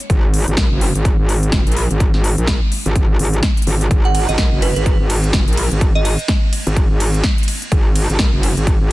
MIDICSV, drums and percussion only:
0, 0, Header, 1, 2, 480
1, 0, Start_track
1, 0, Key_signature, 5, "minor"
1, 0, Tempo, 476190
1, 99, Time_signature, 4, 2, 24, 8
1, 8993, End_track
2, 0, Start_track
2, 0, Title_t, "Drums"
2, 1, Note_on_c, 9, 42, 52
2, 99, Note_off_c, 9, 42, 0
2, 99, Note_on_c, 9, 36, 115
2, 99, Note_on_c, 9, 42, 69
2, 200, Note_off_c, 9, 36, 0
2, 200, Note_off_c, 9, 42, 0
2, 339, Note_on_c, 9, 46, 106
2, 440, Note_off_c, 9, 46, 0
2, 481, Note_on_c, 9, 42, 54
2, 574, Note_on_c, 9, 38, 120
2, 579, Note_off_c, 9, 42, 0
2, 579, Note_on_c, 9, 36, 104
2, 579, Note_on_c, 9, 42, 69
2, 675, Note_off_c, 9, 38, 0
2, 680, Note_off_c, 9, 36, 0
2, 680, Note_off_c, 9, 42, 0
2, 819, Note_on_c, 9, 46, 89
2, 920, Note_off_c, 9, 46, 0
2, 961, Note_on_c, 9, 42, 54
2, 1059, Note_off_c, 9, 42, 0
2, 1059, Note_on_c, 9, 36, 118
2, 1059, Note_on_c, 9, 42, 68
2, 1160, Note_off_c, 9, 36, 0
2, 1160, Note_off_c, 9, 42, 0
2, 1299, Note_on_c, 9, 46, 96
2, 1400, Note_off_c, 9, 46, 0
2, 1441, Note_on_c, 9, 42, 56
2, 1534, Note_on_c, 9, 38, 117
2, 1539, Note_off_c, 9, 42, 0
2, 1539, Note_on_c, 9, 36, 97
2, 1539, Note_on_c, 9, 42, 69
2, 1635, Note_off_c, 9, 38, 0
2, 1640, Note_off_c, 9, 36, 0
2, 1640, Note_off_c, 9, 42, 0
2, 1681, Note_on_c, 9, 42, 52
2, 1730, Note_off_c, 9, 42, 0
2, 1730, Note_on_c, 9, 42, 69
2, 1779, Note_on_c, 9, 46, 92
2, 1831, Note_off_c, 9, 42, 0
2, 1880, Note_off_c, 9, 46, 0
2, 1921, Note_on_c, 9, 42, 53
2, 2019, Note_off_c, 9, 42, 0
2, 2019, Note_on_c, 9, 36, 122
2, 2019, Note_on_c, 9, 42, 72
2, 2120, Note_off_c, 9, 36, 0
2, 2120, Note_off_c, 9, 42, 0
2, 2157, Note_on_c, 9, 38, 37
2, 2257, Note_off_c, 9, 38, 0
2, 2259, Note_on_c, 9, 46, 107
2, 2360, Note_off_c, 9, 46, 0
2, 2401, Note_on_c, 9, 42, 55
2, 2494, Note_on_c, 9, 38, 124
2, 2499, Note_off_c, 9, 42, 0
2, 2499, Note_on_c, 9, 36, 97
2, 2499, Note_on_c, 9, 42, 72
2, 2595, Note_off_c, 9, 38, 0
2, 2600, Note_off_c, 9, 36, 0
2, 2600, Note_off_c, 9, 42, 0
2, 2739, Note_on_c, 9, 46, 89
2, 2840, Note_off_c, 9, 46, 0
2, 2881, Note_on_c, 9, 42, 55
2, 2979, Note_off_c, 9, 42, 0
2, 2979, Note_on_c, 9, 36, 112
2, 2979, Note_on_c, 9, 42, 74
2, 3080, Note_off_c, 9, 36, 0
2, 3080, Note_off_c, 9, 42, 0
2, 3219, Note_on_c, 9, 46, 102
2, 3320, Note_off_c, 9, 46, 0
2, 3361, Note_on_c, 9, 42, 54
2, 3454, Note_on_c, 9, 38, 123
2, 3459, Note_off_c, 9, 42, 0
2, 3459, Note_on_c, 9, 36, 103
2, 3459, Note_on_c, 9, 42, 71
2, 3555, Note_off_c, 9, 38, 0
2, 3560, Note_off_c, 9, 36, 0
2, 3560, Note_off_c, 9, 42, 0
2, 3601, Note_on_c, 9, 42, 53
2, 3650, Note_off_c, 9, 42, 0
2, 3650, Note_on_c, 9, 42, 71
2, 3699, Note_on_c, 9, 46, 85
2, 3751, Note_off_c, 9, 42, 0
2, 3800, Note_off_c, 9, 46, 0
2, 3841, Note_on_c, 9, 42, 57
2, 3939, Note_off_c, 9, 42, 0
2, 3939, Note_on_c, 9, 36, 126
2, 3939, Note_on_c, 9, 42, 71
2, 4040, Note_off_c, 9, 36, 0
2, 4040, Note_off_c, 9, 42, 0
2, 4179, Note_on_c, 9, 46, 107
2, 4179, Note_on_c, 9, 51, 79
2, 4280, Note_off_c, 9, 46, 0
2, 4280, Note_off_c, 9, 51, 0
2, 4322, Note_on_c, 9, 42, 56
2, 4414, Note_on_c, 9, 38, 127
2, 4419, Note_off_c, 9, 42, 0
2, 4419, Note_on_c, 9, 36, 110
2, 4419, Note_on_c, 9, 42, 68
2, 4515, Note_off_c, 9, 38, 0
2, 4520, Note_off_c, 9, 36, 0
2, 4520, Note_off_c, 9, 42, 0
2, 4659, Note_on_c, 9, 46, 91
2, 4659, Note_on_c, 9, 51, 81
2, 4760, Note_off_c, 9, 46, 0
2, 4760, Note_off_c, 9, 51, 0
2, 4801, Note_on_c, 9, 42, 55
2, 4899, Note_off_c, 9, 42, 0
2, 4899, Note_on_c, 9, 36, 121
2, 4899, Note_on_c, 9, 42, 74
2, 5000, Note_off_c, 9, 36, 0
2, 5000, Note_off_c, 9, 42, 0
2, 5139, Note_on_c, 9, 46, 107
2, 5139, Note_on_c, 9, 51, 77
2, 5240, Note_off_c, 9, 46, 0
2, 5240, Note_off_c, 9, 51, 0
2, 5281, Note_on_c, 9, 42, 56
2, 5374, Note_on_c, 9, 38, 125
2, 5379, Note_off_c, 9, 42, 0
2, 5379, Note_on_c, 9, 36, 108
2, 5379, Note_on_c, 9, 42, 70
2, 5475, Note_off_c, 9, 38, 0
2, 5480, Note_off_c, 9, 36, 0
2, 5480, Note_off_c, 9, 42, 0
2, 5521, Note_on_c, 9, 42, 53
2, 5570, Note_off_c, 9, 42, 0
2, 5570, Note_on_c, 9, 42, 68
2, 5619, Note_on_c, 9, 46, 93
2, 5619, Note_on_c, 9, 51, 80
2, 5671, Note_off_c, 9, 42, 0
2, 5719, Note_off_c, 9, 46, 0
2, 5719, Note_off_c, 9, 51, 0
2, 5761, Note_on_c, 9, 42, 53
2, 5859, Note_off_c, 9, 42, 0
2, 5859, Note_on_c, 9, 36, 127
2, 5859, Note_on_c, 9, 42, 70
2, 5959, Note_off_c, 9, 42, 0
2, 5960, Note_off_c, 9, 36, 0
2, 6099, Note_on_c, 9, 46, 107
2, 6099, Note_on_c, 9, 51, 77
2, 6200, Note_off_c, 9, 46, 0
2, 6200, Note_off_c, 9, 51, 0
2, 6241, Note_on_c, 9, 42, 53
2, 6334, Note_on_c, 9, 38, 127
2, 6339, Note_off_c, 9, 42, 0
2, 6339, Note_on_c, 9, 36, 112
2, 6339, Note_on_c, 9, 42, 68
2, 6435, Note_off_c, 9, 38, 0
2, 6440, Note_off_c, 9, 36, 0
2, 6440, Note_off_c, 9, 42, 0
2, 6579, Note_on_c, 9, 46, 97
2, 6579, Note_on_c, 9, 51, 77
2, 6680, Note_off_c, 9, 46, 0
2, 6680, Note_off_c, 9, 51, 0
2, 6721, Note_on_c, 9, 42, 51
2, 6819, Note_off_c, 9, 42, 0
2, 6819, Note_on_c, 9, 36, 124
2, 6819, Note_on_c, 9, 42, 71
2, 6920, Note_off_c, 9, 36, 0
2, 6920, Note_off_c, 9, 42, 0
2, 7059, Note_on_c, 9, 46, 112
2, 7059, Note_on_c, 9, 51, 73
2, 7160, Note_off_c, 9, 46, 0
2, 7160, Note_off_c, 9, 51, 0
2, 7201, Note_on_c, 9, 42, 53
2, 7293, Note_on_c, 9, 38, 127
2, 7299, Note_off_c, 9, 42, 0
2, 7299, Note_on_c, 9, 36, 112
2, 7299, Note_on_c, 9, 42, 66
2, 7394, Note_off_c, 9, 38, 0
2, 7399, Note_off_c, 9, 42, 0
2, 7400, Note_off_c, 9, 36, 0
2, 7441, Note_on_c, 9, 42, 52
2, 7490, Note_off_c, 9, 42, 0
2, 7490, Note_on_c, 9, 42, 68
2, 7539, Note_on_c, 9, 46, 102
2, 7539, Note_on_c, 9, 51, 75
2, 7590, Note_off_c, 9, 42, 0
2, 7640, Note_off_c, 9, 46, 0
2, 7640, Note_off_c, 9, 51, 0
2, 7681, Note_on_c, 9, 42, 56
2, 7779, Note_off_c, 9, 42, 0
2, 7779, Note_on_c, 9, 36, 126
2, 7779, Note_on_c, 9, 42, 66
2, 7879, Note_off_c, 9, 42, 0
2, 7880, Note_off_c, 9, 36, 0
2, 8019, Note_on_c, 9, 46, 114
2, 8019, Note_on_c, 9, 51, 76
2, 8120, Note_off_c, 9, 46, 0
2, 8120, Note_off_c, 9, 51, 0
2, 8161, Note_on_c, 9, 42, 52
2, 8254, Note_on_c, 9, 38, 123
2, 8259, Note_off_c, 9, 42, 0
2, 8259, Note_on_c, 9, 36, 111
2, 8259, Note_on_c, 9, 42, 65
2, 8355, Note_off_c, 9, 38, 0
2, 8360, Note_off_c, 9, 36, 0
2, 8360, Note_off_c, 9, 42, 0
2, 8499, Note_on_c, 9, 46, 102
2, 8499, Note_on_c, 9, 51, 77
2, 8600, Note_off_c, 9, 46, 0
2, 8600, Note_off_c, 9, 51, 0
2, 8641, Note_on_c, 9, 42, 51
2, 8739, Note_off_c, 9, 42, 0
2, 8739, Note_on_c, 9, 36, 121
2, 8739, Note_on_c, 9, 42, 69
2, 8840, Note_off_c, 9, 36, 0
2, 8840, Note_off_c, 9, 42, 0
2, 8993, End_track
0, 0, End_of_file